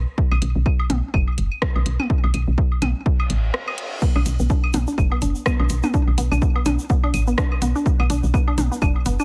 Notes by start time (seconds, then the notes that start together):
0.18 kick
0.31 B1, claves, high woodblock
0.42 B1, closed hi-hat
0.56 B1
0.66 kick, claves
0.79 high woodblock
0.90 B1, closed hi-hat, mid tom
1.14 F#1, kick, claves
1.28 high woodblock
1.38 F#1, closed hi-hat
1.52 claves
1.62 kick, cross-stick
1.76 B1, high woodblock
1.86 B1, closed hi-hat
2.00 mid tom, claves
2.10 kick
2.24 B1, high woodblock
2.34 B1, closed hi-hat, claves
2.48 B1
2.58 kick
2.72 high woodblock
2.82 B1, closed hi-hat, mid tom, claves
3.06 kick, reverse cymbal
3.20 claves, high woodblock
3.30 A1, closed hi-hat
3.54 cross-stick
3.68 claves, high woodblock
3.78 closed hi-hat
4.02 B3, kick, crash, shaker
4.16 B1 D4, claves, high woodblock
4.26 B1, closed hi-hat, shaker
4.39 B1 B3, shaker
4.49 D4, kick, shaker
4.64 claves, high woodblock
4.73 B1 B3, closed hi-hat, mid tom, shaker
4.87 D4, shaker
4.98 F#1, kick, claves, shaker
5.12 B3, high woodblock
5.22 F#1 D4, closed hi-hat, shaker
5.35 shaker
5.46 B3, kick, cross-stick, claves, shaker
5.60 B1 D4, high woodblock
5.69 B1, closed hi-hat, shaker
5.83 B3, mid tom, claves, shaker
5.94 D4, kick, shaker
6.07 B1, high woodblock
6.18 B1 B3, closed hi-hat, shaker
6.31 B1 D4, claves, shaker
6.42 kick, shaker
6.56 B3, high woodblock
6.66 B1 D4, closed hi-hat, mid tom, claves, shaker
6.79 shaker
6.89 B3, kick, shaker
7.04 D4, high woodblock
7.14 A1, closed hi-hat, claves, shaker
7.27 B3, shaker
7.38 D4, kick, cross-stick, shaker
7.52 claves, high woodblock
7.62 B1 B3, closed hi-hat, shaker
7.75 D4, shaker
7.86 kick, shaker
7.99 B1 B3, claves, high woodblock
8.10 B1 D4, closed hi-hat, shaker
8.23 B1, shaker
8.34 B3, kick, claves, shaker
8.48 D4, high woodblock
8.58 B1, closed hi-hat, mid tom, shaker
8.72 B3, shaker
8.82 F#1 D4, kick, claves, shaker
8.96 high woodblock
9.06 F#1 B3, closed hi-hat, shaker
9.19 D4, claves, shaker